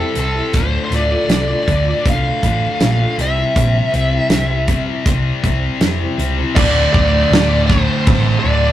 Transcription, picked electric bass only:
0, 0, Header, 1, 2, 480
1, 0, Start_track
1, 0, Key_signature, -1, "minor"
1, 0, Tempo, 752823
1, 341, Time_signature, 4, 2, 24, 8
1, 5560, End_track
2, 0, Start_track
2, 0, Title_t, "Picked electric bass"
2, 0, Program_c, 0, 34
2, 103, Note_on_c, 0, 36, 68
2, 247, Note_off_c, 0, 36, 0
2, 339, Note_on_c, 0, 26, 89
2, 484, Note_off_c, 0, 26, 0
2, 576, Note_on_c, 0, 26, 82
2, 723, Note_off_c, 0, 26, 0
2, 819, Note_on_c, 0, 36, 80
2, 964, Note_off_c, 0, 36, 0
2, 1069, Note_on_c, 0, 38, 89
2, 1212, Note_off_c, 0, 38, 0
2, 1312, Note_on_c, 0, 36, 79
2, 1454, Note_off_c, 0, 36, 0
2, 1549, Note_on_c, 0, 33, 68
2, 1692, Note_off_c, 0, 33, 0
2, 1792, Note_on_c, 0, 34, 82
2, 1934, Note_off_c, 0, 34, 0
2, 2027, Note_on_c, 0, 36, 78
2, 2171, Note_off_c, 0, 36, 0
2, 2270, Note_on_c, 0, 34, 95
2, 2413, Note_off_c, 0, 34, 0
2, 2510, Note_on_c, 0, 36, 91
2, 2653, Note_off_c, 0, 36, 0
2, 2742, Note_on_c, 0, 36, 83
2, 3032, Note_off_c, 0, 36, 0
2, 3226, Note_on_c, 0, 36, 86
2, 3370, Note_off_c, 0, 36, 0
2, 3463, Note_on_c, 0, 36, 72
2, 3608, Note_off_c, 0, 36, 0
2, 3703, Note_on_c, 0, 29, 82
2, 3848, Note_off_c, 0, 29, 0
2, 3940, Note_on_c, 0, 37, 71
2, 4086, Note_off_c, 0, 37, 0
2, 4183, Note_on_c, 0, 26, 105
2, 4363, Note_off_c, 0, 26, 0
2, 4426, Note_on_c, 0, 26, 94
2, 4605, Note_off_c, 0, 26, 0
2, 4654, Note_on_c, 0, 26, 96
2, 5016, Note_off_c, 0, 26, 0
2, 5147, Note_on_c, 0, 33, 100
2, 5325, Note_off_c, 0, 33, 0
2, 5381, Note_on_c, 0, 26, 89
2, 5560, Note_off_c, 0, 26, 0
2, 5560, End_track
0, 0, End_of_file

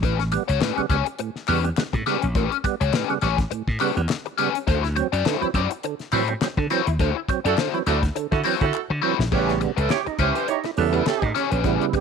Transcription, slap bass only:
0, 0, Header, 1, 3, 480
1, 0, Start_track
1, 0, Tempo, 580833
1, 22, Time_signature, 4, 2, 24, 8
1, 9920, End_track
2, 0, Start_track
2, 0, Title_t, "Slap bass"
2, 0, Program_c, 0, 36
2, 26, Note_on_c, 0, 33, 100
2, 297, Note_off_c, 0, 33, 0
2, 407, Note_on_c, 0, 37, 88
2, 480, Note_off_c, 0, 37, 0
2, 740, Note_on_c, 0, 37, 95
2, 838, Note_off_c, 0, 37, 0
2, 1228, Note_on_c, 0, 40, 94
2, 1400, Note_off_c, 0, 40, 0
2, 1599, Note_on_c, 0, 45, 111
2, 1675, Note_off_c, 0, 45, 0
2, 1845, Note_on_c, 0, 34, 90
2, 1946, Note_off_c, 0, 34, 0
2, 1946, Note_on_c, 0, 33, 106
2, 2042, Note_off_c, 0, 33, 0
2, 2321, Note_on_c, 0, 37, 84
2, 2396, Note_off_c, 0, 37, 0
2, 2663, Note_on_c, 0, 33, 85
2, 2838, Note_off_c, 0, 33, 0
2, 3040, Note_on_c, 0, 45, 98
2, 3116, Note_off_c, 0, 45, 0
2, 3279, Note_on_c, 0, 40, 94
2, 3355, Note_off_c, 0, 40, 0
2, 3865, Note_on_c, 0, 38, 118
2, 4137, Note_off_c, 0, 38, 0
2, 4237, Note_on_c, 0, 42, 77
2, 4314, Note_off_c, 0, 42, 0
2, 4581, Note_on_c, 0, 42, 102
2, 4679, Note_off_c, 0, 42, 0
2, 5064, Note_on_c, 0, 45, 96
2, 5238, Note_off_c, 0, 45, 0
2, 5432, Note_on_c, 0, 50, 110
2, 5510, Note_off_c, 0, 50, 0
2, 5680, Note_on_c, 0, 39, 92
2, 5755, Note_off_c, 0, 39, 0
2, 5783, Note_on_c, 0, 38, 111
2, 5880, Note_off_c, 0, 38, 0
2, 6157, Note_on_c, 0, 42, 78
2, 6234, Note_off_c, 0, 42, 0
2, 6502, Note_on_c, 0, 38, 79
2, 6676, Note_off_c, 0, 38, 0
2, 6880, Note_on_c, 0, 50, 109
2, 6955, Note_off_c, 0, 50, 0
2, 7117, Note_on_c, 0, 50, 94
2, 7193, Note_off_c, 0, 50, 0
2, 7357, Note_on_c, 0, 50, 110
2, 7434, Note_off_c, 0, 50, 0
2, 7594, Note_on_c, 0, 34, 91
2, 7672, Note_off_c, 0, 34, 0
2, 7703, Note_on_c, 0, 33, 104
2, 7975, Note_off_c, 0, 33, 0
2, 8077, Note_on_c, 0, 37, 86
2, 8154, Note_off_c, 0, 37, 0
2, 8418, Note_on_c, 0, 37, 92
2, 8517, Note_off_c, 0, 37, 0
2, 8906, Note_on_c, 0, 40, 86
2, 9080, Note_off_c, 0, 40, 0
2, 9276, Note_on_c, 0, 45, 98
2, 9354, Note_off_c, 0, 45, 0
2, 9519, Note_on_c, 0, 34, 90
2, 9624, Note_off_c, 0, 34, 0
2, 9624, Note_on_c, 0, 33, 108
2, 9722, Note_off_c, 0, 33, 0
2, 9920, End_track
3, 0, Start_track
3, 0, Title_t, "Muted slap bass strokes"
3, 643, Note_on_c, 9, 29, 48
3, 725, Note_off_c, 9, 29, 0
3, 2903, Note_on_c, 9, 29, 53
3, 2985, Note_off_c, 9, 29, 0
3, 4484, Note_on_c, 9, 29, 47
3, 4566, Note_off_c, 9, 29, 0
3, 8321, Note_on_c, 9, 29, 47
3, 8403, Note_off_c, 9, 29, 0
3, 9920, End_track
0, 0, End_of_file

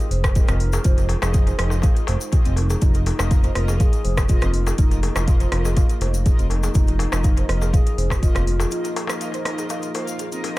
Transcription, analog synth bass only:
0, 0, Header, 1, 2, 480
1, 0, Start_track
1, 0, Tempo, 491803
1, 830, Time_signature, 4, 2, 24, 8
1, 10332, End_track
2, 0, Start_track
2, 0, Title_t, "Analog synth bass"
2, 0, Program_c, 0, 38
2, 106, Note_on_c, 0, 29, 89
2, 409, Note_off_c, 0, 29, 0
2, 473, Note_on_c, 0, 29, 91
2, 770, Note_off_c, 0, 29, 0
2, 830, Note_on_c, 0, 29, 104
2, 1132, Note_off_c, 0, 29, 0
2, 1196, Note_on_c, 0, 29, 106
2, 1492, Note_off_c, 0, 29, 0
2, 1549, Note_on_c, 0, 29, 88
2, 1851, Note_off_c, 0, 29, 0
2, 2033, Note_on_c, 0, 29, 104
2, 2117, Note_off_c, 0, 29, 0
2, 2399, Note_on_c, 0, 29, 101
2, 2693, Note_off_c, 0, 29, 0
2, 2754, Note_on_c, 0, 29, 97
2, 3053, Note_off_c, 0, 29, 0
2, 3119, Note_on_c, 0, 29, 104
2, 3413, Note_off_c, 0, 29, 0
2, 3471, Note_on_c, 0, 29, 86
2, 3772, Note_off_c, 0, 29, 0
2, 3954, Note_on_c, 0, 29, 87
2, 4253, Note_off_c, 0, 29, 0
2, 4319, Note_on_c, 0, 29, 90
2, 4613, Note_off_c, 0, 29, 0
2, 4671, Note_on_c, 0, 29, 103
2, 4972, Note_off_c, 0, 29, 0
2, 5034, Note_on_c, 0, 29, 101
2, 5330, Note_off_c, 0, 29, 0
2, 5390, Note_on_c, 0, 29, 89
2, 5691, Note_off_c, 0, 29, 0
2, 5867, Note_on_c, 0, 29, 85
2, 6170, Note_off_c, 0, 29, 0
2, 6237, Note_on_c, 0, 29, 86
2, 6532, Note_off_c, 0, 29, 0
2, 6590, Note_on_c, 0, 29, 101
2, 6891, Note_off_c, 0, 29, 0
2, 6955, Note_on_c, 0, 29, 102
2, 7251, Note_off_c, 0, 29, 0
2, 7311, Note_on_c, 0, 29, 93
2, 7612, Note_off_c, 0, 29, 0
2, 7785, Note_on_c, 0, 29, 82
2, 8089, Note_off_c, 0, 29, 0
2, 8151, Note_on_c, 0, 29, 90
2, 8449, Note_off_c, 0, 29, 0
2, 10332, End_track
0, 0, End_of_file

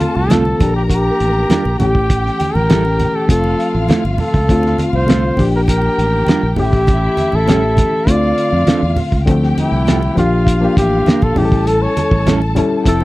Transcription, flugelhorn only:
0, 0, Header, 1, 2, 480
1, 0, Start_track
1, 0, Key_signature, -1, "minor"
1, 0, Tempo, 598205
1, 1682, Time_signature, 4, 2, 24, 8
1, 10463, End_track
2, 0, Start_track
2, 0, Title_t, "Flugelhorn"
2, 0, Program_c, 0, 56
2, 0, Note_on_c, 0, 65, 76
2, 130, Note_on_c, 0, 69, 93
2, 142, Note_off_c, 0, 65, 0
2, 604, Note_off_c, 0, 69, 0
2, 609, Note_on_c, 0, 67, 70
2, 661, Note_off_c, 0, 67, 0
2, 724, Note_on_c, 0, 67, 89
2, 1411, Note_off_c, 0, 67, 0
2, 1438, Note_on_c, 0, 67, 94
2, 2048, Note_on_c, 0, 70, 108
2, 2060, Note_off_c, 0, 67, 0
2, 2530, Note_on_c, 0, 69, 89
2, 2542, Note_off_c, 0, 70, 0
2, 2646, Note_off_c, 0, 69, 0
2, 2652, Note_on_c, 0, 69, 88
2, 3116, Note_off_c, 0, 69, 0
2, 3372, Note_on_c, 0, 69, 82
2, 3934, Note_off_c, 0, 69, 0
2, 3973, Note_on_c, 0, 72, 93
2, 4414, Note_off_c, 0, 72, 0
2, 4456, Note_on_c, 0, 70, 77
2, 4507, Note_off_c, 0, 70, 0
2, 4566, Note_on_c, 0, 70, 97
2, 5251, Note_off_c, 0, 70, 0
2, 5290, Note_on_c, 0, 67, 86
2, 5899, Note_on_c, 0, 69, 100
2, 5911, Note_off_c, 0, 67, 0
2, 6501, Note_on_c, 0, 74, 95
2, 6513, Note_off_c, 0, 69, 0
2, 7211, Note_off_c, 0, 74, 0
2, 7696, Note_on_c, 0, 64, 78
2, 8136, Note_off_c, 0, 64, 0
2, 8169, Note_on_c, 0, 65, 80
2, 8613, Note_off_c, 0, 65, 0
2, 8651, Note_on_c, 0, 67, 95
2, 9010, Note_on_c, 0, 69, 89
2, 9022, Note_off_c, 0, 67, 0
2, 9129, Note_on_c, 0, 67, 91
2, 9141, Note_off_c, 0, 69, 0
2, 9367, Note_on_c, 0, 69, 86
2, 9379, Note_off_c, 0, 67, 0
2, 9484, Note_on_c, 0, 73, 98
2, 9496, Note_off_c, 0, 69, 0
2, 9962, Note_off_c, 0, 73, 0
2, 10333, Note_on_c, 0, 69, 95
2, 10463, Note_off_c, 0, 69, 0
2, 10463, End_track
0, 0, End_of_file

